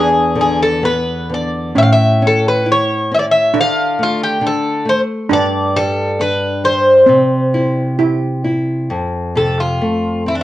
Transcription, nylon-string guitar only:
Already playing: E2
0.36 D3
0.83 B3
1.29 D3
1.76 A2
2.22 C#4
2.66 E4
3.11 C#4
3.53 D3
3.99 A3
4.41 D3
4.85 A3
5.31 G2
5.76 G3
6.19 D4
6.64 G3
7.09 C3
7.54 E4
7.99 G4
8.44 E4
8.90 F2
9.35 C3
9.81 A3
10.26 C4

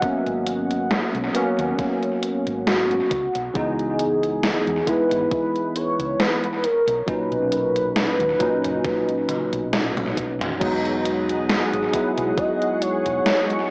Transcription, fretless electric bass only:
0.26 G#1
1.14 B1
1.59 D#2
2.47 G#1
3.11 C#2
3.35 B1
3.55 C#2
4.67 E2
5.11 G#1
6.00 C#2
6.88 B1
7.32 B1
8.20 D#2
8.64 F#1
9.53 B1
9.97 B1
10.61 E1
11.73 G#1
12.18 B1
13.06 E1

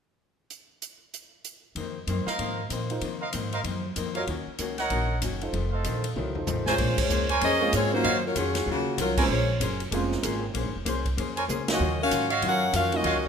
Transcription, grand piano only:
2.90 D#4 F4 A#4 C5
4.15 F4 F#4 A#4 C#5
5.41 D#4 F4 A4 C5
6.16 E4 F#4 A#4 C#5
6.35 D#4 F4 A4 C5
7.61 G#3 A#3 C4 C#4 F4
7.92 F#3 A#3 C#4 D#4 F4
9.18 G#3 A#3 C4 C#4 F4
9.92 G#3 A#3 C4 C#4 F4
11.68 F#3 A#3 C#4 D#4 F4
12.92 F#3 A#3 C#4 D#4 F4

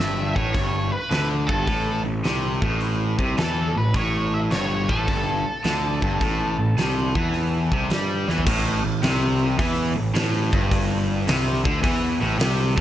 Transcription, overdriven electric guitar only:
Already playing: G2
0.36 A2
0.54 G2
1.11 D3
1.48 G2
1.66 A2
2.05 A2
2.24 C3
2.63 A2
3.19 C3
3.38 E3
3.76 A2
3.94 A2
4.50 G2
4.89 A2
5.07 G2
5.64 D3
6.02 G2
6.21 A2
6.59 A2
6.78 C3
7.16 E3
7.73 C3
7.91 G3
8.28 E3
8.47 A2
8.85 A2
9.03 C3
9.59 E3
9.96 A2
10.14 A2
10.52 G2
11.27 C3
11.65 D3
11.83 E3
12.21 A2
12.39 C3
12.77 A2

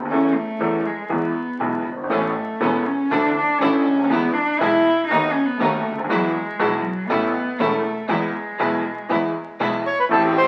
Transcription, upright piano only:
0.05 D#2
0.11 E2 E3 A3 C#4 A4
0.60 E2 E3 A3 C#4 A4
1.09 E2 E3 G#3 B3 G#4
1.60 B1 B2 E3 G#3 B3 G#4
1.92 F#1
1.97 G1
2.03 G#1
2.09 A1 A2 E3 B3 C#4 A4
2.61 E1 E2 E3 B3 C#4 A4
3.11 D2 D3 E3 A3 D4 A4
3.61 A1 A2 E3 A3 D4 A4
3.93 C#2
3.99 D2
4.04 D#2
4.10 E2 E3 G#3 B3 G#4
4.60 B1 B2 E3 G#3 B3 G#4
5.10 D#2 D#3 A3 B3 F#4
5.60 D#2 D#3 A3 B3 F#4
5.92 C#2
5.98 D2
6.04 D#2
6.09 E2 E3 G#3 B3 F#4
6.59 B1 B2 E3 G#3 B3 F#4
7.10 A1 A2 E3 A3 C#4 A4
7.60 E1 E2 E3 A3 C#4 A4
8.09 E2 E3 G#3 B3 G#4
8.59 B1 B2 E3 G#3 B3 G#4
9.09 E2 E3 G#3 B3 G#4
9.60 B1 B2 E3 G#3 B3 G#4
10.09 A1 A2 E3 A3 C4 G4

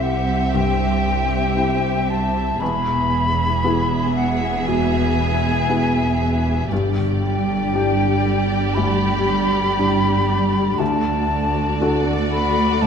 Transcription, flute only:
0.03 F#5
0.55 G5
2.10 A5
2.60 B5
4.16 F#5
4.66 G#5
7.22 G5
8.74 B5
10.78 A5
12.32 B5
12.82 A5

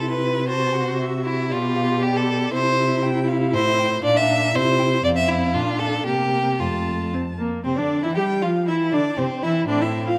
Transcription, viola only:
Already playing: E4
0.48 F#4
1.52 G4
2.53 E4
4.04 D4
4.54 E4
5.05 C4
5.56 D4
6.08 A#3
6.61 A3
7.14 C4
7.39 A#3
7.65 C4
7.78 D4
8.04 E4
8.17 G4
8.43 F4
8.69 E4
8.94 D4
9.19 C4
9.44 E4
9.69 D4
9.81 E4
10.06 F4

